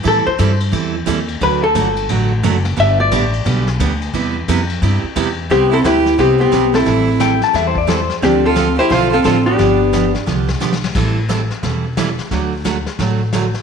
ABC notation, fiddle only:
X:1
M:4/4
L:1/8
Q:"Swing" 1/4=176
K:C
V:1 name="Fiddle"
z8 | z8 | z8 | z8 |
C E G2 C C2 E- | E3 z4 z | D F2 G F F F D- | D3 z4 z |
z8 | z8 |]